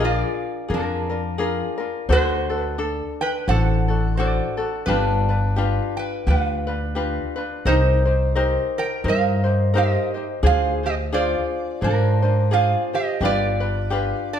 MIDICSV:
0, 0, Header, 1, 4, 480
1, 0, Start_track
1, 0, Tempo, 695249
1, 1448, Time_signature, 4, 2, 24, 8
1, 9938, End_track
2, 0, Start_track
2, 0, Title_t, "Resonator guitar played with a steel bar"
2, 0, Program_c, 0, 25
2, 30, Note_on_c, 0, 65, 72
2, 34, Note_on_c, 0, 74, 97
2, 472, Note_off_c, 0, 65, 0
2, 510, Note_off_c, 0, 74, 0
2, 510, Note_on_c, 0, 70, 78
2, 512, Note_on_c, 0, 62, 55
2, 1230, Note_off_c, 0, 62, 0
2, 1230, Note_off_c, 0, 70, 0
2, 1465, Note_on_c, 0, 66, 98
2, 1468, Note_on_c, 0, 72, 119
2, 1779, Note_off_c, 0, 72, 0
2, 1779, Note_on_c, 0, 71, 119
2, 1910, Note_off_c, 0, 66, 0
2, 1910, Note_off_c, 0, 71, 0
2, 2216, Note_on_c, 0, 79, 100
2, 2225, Note_on_c, 0, 71, 79
2, 2405, Note_off_c, 0, 71, 0
2, 2405, Note_off_c, 0, 79, 0
2, 2407, Note_on_c, 0, 78, 102
2, 2417, Note_on_c, 0, 69, 77
2, 2866, Note_off_c, 0, 69, 0
2, 2882, Note_on_c, 0, 74, 80
2, 2897, Note_on_c, 0, 66, 67
2, 2903, Note_off_c, 0, 78, 0
2, 3238, Note_off_c, 0, 74, 0
2, 3246, Note_off_c, 0, 66, 0
2, 3354, Note_on_c, 0, 71, 100
2, 3374, Note_on_c, 0, 62, 78
2, 4102, Note_off_c, 0, 62, 0
2, 4121, Note_on_c, 0, 79, 84
2, 4129, Note_off_c, 0, 71, 0
2, 4137, Note_on_c, 0, 71, 68
2, 4321, Note_off_c, 0, 71, 0
2, 4332, Note_off_c, 0, 79, 0
2, 4335, Note_on_c, 0, 77, 77
2, 4351, Note_on_c, 0, 71, 63
2, 5062, Note_off_c, 0, 77, 0
2, 5070, Note_off_c, 0, 71, 0
2, 5293, Note_on_c, 0, 72, 115
2, 5304, Note_on_c, 0, 63, 89
2, 5742, Note_off_c, 0, 72, 0
2, 5748, Note_off_c, 0, 63, 0
2, 6062, Note_on_c, 0, 70, 80
2, 6070, Note_on_c, 0, 79, 97
2, 6242, Note_off_c, 0, 70, 0
2, 6247, Note_off_c, 0, 79, 0
2, 6270, Note_on_c, 0, 70, 76
2, 6278, Note_on_c, 0, 77, 101
2, 6711, Note_off_c, 0, 70, 0
2, 6744, Note_on_c, 0, 67, 69
2, 6749, Note_off_c, 0, 77, 0
2, 6751, Note_on_c, 0, 75, 93
2, 7088, Note_off_c, 0, 67, 0
2, 7092, Note_off_c, 0, 75, 0
2, 7222, Note_on_c, 0, 68, 87
2, 7227, Note_on_c, 0, 77, 110
2, 7473, Note_off_c, 0, 68, 0
2, 7496, Note_on_c, 0, 67, 65
2, 7498, Note_off_c, 0, 77, 0
2, 7501, Note_on_c, 0, 75, 92
2, 7548, Note_off_c, 0, 67, 0
2, 7553, Note_off_c, 0, 75, 0
2, 7691, Note_on_c, 0, 65, 69
2, 7694, Note_on_c, 0, 74, 98
2, 8140, Note_off_c, 0, 65, 0
2, 8176, Note_off_c, 0, 74, 0
2, 8176, Note_on_c, 0, 70, 88
2, 8179, Note_on_c, 0, 62, 66
2, 8624, Note_off_c, 0, 62, 0
2, 8652, Note_on_c, 0, 68, 66
2, 8655, Note_on_c, 0, 77, 93
2, 8665, Note_off_c, 0, 70, 0
2, 8907, Note_off_c, 0, 68, 0
2, 8935, Note_off_c, 0, 77, 0
2, 8937, Note_on_c, 0, 67, 73
2, 8942, Note_on_c, 0, 75, 83
2, 9119, Note_off_c, 0, 67, 0
2, 9139, Note_off_c, 0, 75, 0
2, 9146, Note_on_c, 0, 65, 85
2, 9148, Note_on_c, 0, 74, 106
2, 9866, Note_off_c, 0, 65, 0
2, 9895, Note_off_c, 0, 74, 0
2, 9896, Note_on_c, 0, 71, 83
2, 9898, Note_on_c, 0, 62, 66
2, 9938, Note_off_c, 0, 62, 0
2, 9938, Note_off_c, 0, 71, 0
2, 9938, End_track
3, 0, Start_track
3, 0, Title_t, "Ukulele"
3, 0, Program_c, 1, 24
3, 0, Note_on_c, 1, 62, 85
3, 0, Note_on_c, 1, 65, 90
3, 0, Note_on_c, 1, 68, 90
3, 2, Note_on_c, 1, 70, 92
3, 464, Note_off_c, 1, 68, 0
3, 473, Note_on_c, 1, 68, 59
3, 474, Note_off_c, 1, 65, 0
3, 479, Note_off_c, 1, 62, 0
3, 480, Note_off_c, 1, 70, 0
3, 481, Note_on_c, 1, 62, 57
3, 483, Note_on_c, 1, 65, 63
3, 488, Note_on_c, 1, 70, 64
3, 748, Note_off_c, 1, 70, 0
3, 756, Note_off_c, 1, 65, 0
3, 756, Note_on_c, 1, 70, 47
3, 758, Note_off_c, 1, 68, 0
3, 762, Note_off_c, 1, 62, 0
3, 765, Note_on_c, 1, 65, 47
3, 770, Note_on_c, 1, 62, 41
3, 951, Note_off_c, 1, 65, 0
3, 952, Note_off_c, 1, 62, 0
3, 954, Note_on_c, 1, 68, 82
3, 959, Note_off_c, 1, 70, 0
3, 959, Note_on_c, 1, 65, 73
3, 960, Note_on_c, 1, 62, 81
3, 967, Note_on_c, 1, 70, 83
3, 1218, Note_off_c, 1, 70, 0
3, 1227, Note_on_c, 1, 70, 58
3, 1232, Note_off_c, 1, 65, 0
3, 1237, Note_off_c, 1, 62, 0
3, 1239, Note_off_c, 1, 68, 0
3, 1240, Note_on_c, 1, 65, 52
3, 1245, Note_on_c, 1, 62, 50
3, 1437, Note_off_c, 1, 62, 0
3, 1439, Note_off_c, 1, 70, 0
3, 1442, Note_on_c, 1, 72, 89
3, 1445, Note_off_c, 1, 65, 0
3, 1445, Note_on_c, 1, 62, 80
3, 1448, Note_on_c, 1, 66, 87
3, 1452, Note_on_c, 1, 69, 90
3, 1715, Note_off_c, 1, 69, 0
3, 1720, Note_off_c, 1, 72, 0
3, 1723, Note_on_c, 1, 69, 53
3, 1724, Note_off_c, 1, 66, 0
3, 1725, Note_off_c, 1, 62, 0
3, 1732, Note_on_c, 1, 66, 46
3, 1733, Note_on_c, 1, 62, 39
3, 1912, Note_off_c, 1, 62, 0
3, 1916, Note_off_c, 1, 69, 0
3, 1921, Note_on_c, 1, 62, 77
3, 1924, Note_on_c, 1, 69, 88
3, 1932, Note_off_c, 1, 66, 0
3, 2403, Note_on_c, 1, 72, 56
3, 2407, Note_off_c, 1, 69, 0
3, 2411, Note_off_c, 1, 62, 0
3, 2413, Note_on_c, 1, 66, 60
3, 2414, Note_on_c, 1, 62, 67
3, 2420, Note_on_c, 1, 69, 69
3, 2672, Note_off_c, 1, 69, 0
3, 2677, Note_off_c, 1, 72, 0
3, 2680, Note_on_c, 1, 69, 50
3, 2682, Note_off_c, 1, 66, 0
3, 2688, Note_off_c, 1, 62, 0
3, 2690, Note_on_c, 1, 66, 51
3, 2696, Note_on_c, 1, 62, 44
3, 2882, Note_off_c, 1, 66, 0
3, 2884, Note_off_c, 1, 62, 0
3, 2886, Note_off_c, 1, 69, 0
3, 2890, Note_on_c, 1, 66, 74
3, 2890, Note_on_c, 1, 72, 69
3, 2893, Note_on_c, 1, 62, 73
3, 2896, Note_on_c, 1, 69, 81
3, 3149, Note_off_c, 1, 69, 0
3, 3154, Note_off_c, 1, 72, 0
3, 3157, Note_off_c, 1, 66, 0
3, 3157, Note_on_c, 1, 69, 52
3, 3166, Note_off_c, 1, 62, 0
3, 3166, Note_on_c, 1, 66, 49
3, 3174, Note_on_c, 1, 62, 40
3, 3356, Note_off_c, 1, 62, 0
3, 3364, Note_off_c, 1, 69, 0
3, 3365, Note_on_c, 1, 62, 89
3, 3366, Note_on_c, 1, 67, 82
3, 3368, Note_off_c, 1, 66, 0
3, 3371, Note_on_c, 1, 65, 78
3, 3371, Note_on_c, 1, 71, 91
3, 3642, Note_off_c, 1, 71, 0
3, 3645, Note_off_c, 1, 62, 0
3, 3646, Note_off_c, 1, 67, 0
3, 3648, Note_off_c, 1, 65, 0
3, 3650, Note_on_c, 1, 71, 52
3, 3657, Note_on_c, 1, 65, 42
3, 3662, Note_on_c, 1, 62, 42
3, 3841, Note_off_c, 1, 62, 0
3, 3841, Note_on_c, 1, 67, 80
3, 3846, Note_off_c, 1, 65, 0
3, 3847, Note_off_c, 1, 71, 0
3, 3849, Note_on_c, 1, 62, 81
3, 3855, Note_on_c, 1, 65, 85
3, 3855, Note_on_c, 1, 71, 86
3, 4323, Note_off_c, 1, 62, 0
3, 4323, Note_off_c, 1, 67, 0
3, 4326, Note_on_c, 1, 67, 60
3, 4328, Note_off_c, 1, 65, 0
3, 4331, Note_on_c, 1, 62, 52
3, 4332, Note_off_c, 1, 71, 0
3, 4336, Note_on_c, 1, 65, 61
3, 4342, Note_on_c, 1, 71, 60
3, 4596, Note_off_c, 1, 71, 0
3, 4604, Note_on_c, 1, 71, 46
3, 4605, Note_off_c, 1, 65, 0
3, 4605, Note_off_c, 1, 67, 0
3, 4608, Note_off_c, 1, 62, 0
3, 4613, Note_on_c, 1, 65, 47
3, 4618, Note_on_c, 1, 62, 42
3, 4797, Note_off_c, 1, 62, 0
3, 4798, Note_off_c, 1, 65, 0
3, 4799, Note_off_c, 1, 71, 0
3, 4799, Note_on_c, 1, 67, 68
3, 4805, Note_on_c, 1, 62, 70
3, 4806, Note_on_c, 1, 65, 72
3, 4808, Note_on_c, 1, 71, 86
3, 5072, Note_off_c, 1, 71, 0
3, 5080, Note_on_c, 1, 71, 59
3, 5082, Note_off_c, 1, 65, 0
3, 5082, Note_off_c, 1, 67, 0
3, 5085, Note_off_c, 1, 62, 0
3, 5090, Note_on_c, 1, 65, 51
3, 5095, Note_on_c, 1, 62, 48
3, 5285, Note_off_c, 1, 71, 0
3, 5286, Note_on_c, 1, 70, 81
3, 5289, Note_off_c, 1, 65, 0
3, 5292, Note_off_c, 1, 62, 0
3, 5292, Note_on_c, 1, 67, 88
3, 5295, Note_on_c, 1, 63, 85
3, 5296, Note_on_c, 1, 72, 84
3, 5552, Note_off_c, 1, 72, 0
3, 5561, Note_off_c, 1, 67, 0
3, 5561, Note_on_c, 1, 72, 49
3, 5565, Note_off_c, 1, 63, 0
3, 5565, Note_off_c, 1, 70, 0
3, 5570, Note_on_c, 1, 67, 40
3, 5574, Note_on_c, 1, 63, 44
3, 5762, Note_off_c, 1, 63, 0
3, 5765, Note_off_c, 1, 67, 0
3, 5765, Note_off_c, 1, 72, 0
3, 5768, Note_on_c, 1, 70, 71
3, 5770, Note_on_c, 1, 63, 78
3, 5773, Note_on_c, 1, 67, 84
3, 5775, Note_on_c, 1, 72, 90
3, 6233, Note_off_c, 1, 70, 0
3, 6239, Note_off_c, 1, 63, 0
3, 6240, Note_off_c, 1, 67, 0
3, 6241, Note_on_c, 1, 70, 53
3, 6247, Note_off_c, 1, 72, 0
3, 6247, Note_on_c, 1, 63, 56
3, 6248, Note_on_c, 1, 67, 59
3, 6250, Note_on_c, 1, 72, 62
3, 6507, Note_off_c, 1, 72, 0
3, 6516, Note_on_c, 1, 72, 53
3, 6520, Note_off_c, 1, 67, 0
3, 6522, Note_off_c, 1, 70, 0
3, 6525, Note_off_c, 1, 63, 0
3, 6528, Note_on_c, 1, 67, 46
3, 6533, Note_on_c, 1, 63, 44
3, 6722, Note_off_c, 1, 72, 0
3, 6722, Note_on_c, 1, 70, 74
3, 6723, Note_off_c, 1, 63, 0
3, 6723, Note_off_c, 1, 67, 0
3, 6731, Note_on_c, 1, 63, 83
3, 6732, Note_on_c, 1, 67, 79
3, 6734, Note_on_c, 1, 72, 80
3, 6994, Note_off_c, 1, 72, 0
3, 7002, Note_off_c, 1, 70, 0
3, 7002, Note_on_c, 1, 72, 45
3, 7004, Note_off_c, 1, 67, 0
3, 7007, Note_off_c, 1, 63, 0
3, 7013, Note_on_c, 1, 67, 50
3, 7021, Note_on_c, 1, 63, 42
3, 7196, Note_off_c, 1, 72, 0
3, 7199, Note_off_c, 1, 63, 0
3, 7200, Note_on_c, 1, 68, 88
3, 7201, Note_on_c, 1, 62, 85
3, 7202, Note_off_c, 1, 67, 0
3, 7204, Note_on_c, 1, 65, 76
3, 7205, Note_on_c, 1, 72, 95
3, 7471, Note_off_c, 1, 72, 0
3, 7475, Note_off_c, 1, 65, 0
3, 7476, Note_off_c, 1, 68, 0
3, 7479, Note_on_c, 1, 72, 52
3, 7481, Note_off_c, 1, 62, 0
3, 7484, Note_on_c, 1, 65, 47
3, 7677, Note_off_c, 1, 65, 0
3, 7678, Note_off_c, 1, 72, 0
3, 7680, Note_on_c, 1, 68, 83
3, 7682, Note_on_c, 1, 62, 82
3, 7685, Note_on_c, 1, 65, 89
3, 7690, Note_on_c, 1, 72, 91
3, 8146, Note_off_c, 1, 68, 0
3, 8154, Note_on_c, 1, 68, 56
3, 8159, Note_off_c, 1, 72, 0
3, 8160, Note_off_c, 1, 62, 0
3, 8163, Note_off_c, 1, 65, 0
3, 8163, Note_on_c, 1, 62, 60
3, 8166, Note_on_c, 1, 65, 64
3, 8167, Note_on_c, 1, 72, 68
3, 8431, Note_off_c, 1, 72, 0
3, 8437, Note_off_c, 1, 68, 0
3, 8440, Note_off_c, 1, 65, 0
3, 8440, Note_on_c, 1, 72, 49
3, 8441, Note_off_c, 1, 62, 0
3, 8448, Note_on_c, 1, 65, 46
3, 8454, Note_on_c, 1, 62, 44
3, 8635, Note_off_c, 1, 62, 0
3, 8637, Note_on_c, 1, 68, 78
3, 8639, Note_off_c, 1, 65, 0
3, 8641, Note_off_c, 1, 72, 0
3, 8643, Note_on_c, 1, 62, 69
3, 8647, Note_on_c, 1, 65, 86
3, 8649, Note_on_c, 1, 72, 83
3, 8918, Note_off_c, 1, 68, 0
3, 8921, Note_off_c, 1, 62, 0
3, 8921, Note_off_c, 1, 72, 0
3, 8924, Note_off_c, 1, 65, 0
3, 8929, Note_on_c, 1, 72, 47
3, 8934, Note_on_c, 1, 65, 48
3, 9117, Note_off_c, 1, 72, 0
3, 9120, Note_on_c, 1, 67, 80
3, 9124, Note_off_c, 1, 65, 0
3, 9127, Note_on_c, 1, 62, 86
3, 9132, Note_on_c, 1, 65, 86
3, 9134, Note_on_c, 1, 71, 100
3, 9383, Note_off_c, 1, 71, 0
3, 9391, Note_on_c, 1, 71, 53
3, 9394, Note_off_c, 1, 65, 0
3, 9400, Note_off_c, 1, 67, 0
3, 9402, Note_on_c, 1, 65, 49
3, 9403, Note_off_c, 1, 62, 0
3, 9410, Note_on_c, 1, 62, 45
3, 9595, Note_off_c, 1, 62, 0
3, 9596, Note_off_c, 1, 65, 0
3, 9599, Note_off_c, 1, 71, 0
3, 9599, Note_on_c, 1, 67, 78
3, 9603, Note_on_c, 1, 62, 82
3, 9605, Note_on_c, 1, 65, 86
3, 9613, Note_on_c, 1, 71, 98
3, 9938, Note_off_c, 1, 62, 0
3, 9938, Note_off_c, 1, 65, 0
3, 9938, Note_off_c, 1, 67, 0
3, 9938, Note_off_c, 1, 71, 0
3, 9938, End_track
4, 0, Start_track
4, 0, Title_t, "Upright bass"
4, 0, Program_c, 2, 32
4, 0, Note_on_c, 2, 34, 108
4, 146, Note_off_c, 2, 34, 0
4, 482, Note_on_c, 2, 41, 101
4, 1109, Note_off_c, 2, 41, 0
4, 1441, Note_on_c, 2, 38, 101
4, 2068, Note_off_c, 2, 38, 0
4, 2401, Note_on_c, 2, 33, 109
4, 3028, Note_off_c, 2, 33, 0
4, 3361, Note_on_c, 2, 31, 98
4, 3988, Note_off_c, 2, 31, 0
4, 4327, Note_on_c, 2, 38, 108
4, 4952, Note_off_c, 2, 38, 0
4, 5284, Note_on_c, 2, 36, 100
4, 5909, Note_off_c, 2, 36, 0
4, 6242, Note_on_c, 2, 43, 107
4, 6867, Note_off_c, 2, 43, 0
4, 7199, Note_on_c, 2, 38, 107
4, 7825, Note_off_c, 2, 38, 0
4, 8161, Note_on_c, 2, 44, 111
4, 8786, Note_off_c, 2, 44, 0
4, 9118, Note_on_c, 2, 31, 96
4, 9743, Note_off_c, 2, 31, 0
4, 9938, End_track
0, 0, End_of_file